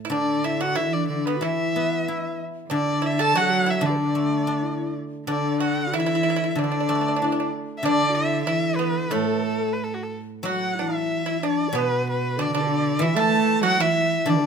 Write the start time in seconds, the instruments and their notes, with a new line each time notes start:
Already playing: guzheng A2
0.05 pipa E4
0.10 guzheng D3, cello D3, pipa D4, xiao D4, erhu D5
0.44 pipa E4, xiao E4, erhu E5
0.61 pipa F#4, xiao F#4, erhu F#5
0.75 cello E3, pipa E4, xiao E4, erhu E5
0.93 xiao D4, erhu D5
1.09 cello D3, xiao D4, erhu D5
1.26 pipa B3, erhu B4
1.37 xiao F#4
1.41 guzheng E3, cello E3, pipa E4, xiao E4, erhu E5
1.76 guzheng B3
2.08 guzheng E4
2.70 cello D3, guzheng D3, pipa D4, xiao D4, erhu D5
3.02 pipa E4
3.06 erhu E5
3.19 pipa A4, xiao A4, erhu A5
3.35 cello F#3, pipa F#4, xiao F#4, erhu F#5
3.42 xiao A4
3.51 xiao F#4
3.66 pipa E4
3.71 erhu E5
3.81 guzheng D3, cello D3, pipa D4, xiao D4
3.86 xiao B4, erhu D5
3.97 xiao D4
4.15 guzheng A3
4.47 guzheng D4
4.63 xiao E4
5.27 guzheng D3, cello D3, xiao D4, pipa D4, erhu D5
5.60 pipa F#4, erhu F#5
5.87 xiao F#4
5.92 cello E3, xiao E4, pipa E4, erhu E5
6.00 pipa E4
6.06 pipa E4
6.15 pipa E4
6.23 pipa E4
6.30 pipa E4
6.36 pipa E4
6.41 xiao E4, pipa E4
6.51 erhu E5
6.55 guzheng D3, cello D3, xiao D4, pipa D4, erhu D5
6.64 pipa D4
6.72 pipa D4
6.80 pipa D4
6.89 guzheng A3, pipa D4
6.95 pipa D4
7.01 pipa D4
7.08 pipa D4
7.16 pipa D4, xiao E4
7.22 guzheng D4, pipa D4
7.32 pipa D4
7.40 pipa D4
7.78 erhu E5
7.83 guzheng D3, cello D3, xiao D4, pipa D4, erhu D5
8.10 xiao F#4
8.15 xiao E4, erhu E5
8.44 cello E3, pipa E4, erhu E5
8.48 xiao E4
8.76 pipa B3, erhu B4
9.10 guzheng A2, cello A2, pipa A3, erhu A4, xiao A4
9.19 xiao B4
9.26 xiao A4
9.34 xiao B4
9.44 xiao A4
9.73 erhu B4
9.84 erhu A4
9.94 erhu F#4
10.03 erhu A4
10.43 guzheng F#3, cello F#3, xiao F#4, pipa F#4
10.47 erhu F#5
10.78 cello E3, xiao E4, pipa E4, erhu E5
11.26 pipa E4, xiao E4
11.42 xiao D4, pipa D4
11.46 erhu D5
11.69 xiao D5
11.73 guzheng B2, cello B2, pipa B3, xiao B4
11.79 erhu B4
12.08 xiao B4, erhu B4
12.38 cello D3, xiao D4, pipa D4, erhu D5
12.52 cello D3, xiao D4, pipa D4
12.57 erhu D5
12.61 xiao B4
12.67 xiao D4
12.99 guzheng E3, cello E3, xiao E4, pipa E4, erhu E5
13.04 xiao E4 F#4
13.15 cello A3, xiao A4, pipa A4, erhu A5
13.61 cello F#3, xiao F#4, pipa F#4, erhu F#5
13.78 cello E3, xiao E4, pipa E4, erhu E5
14.25 cello D3, guzheng D3, pipa D4, xiao D4, erhu D5
14.35 xiao B4
14.41 xiao D4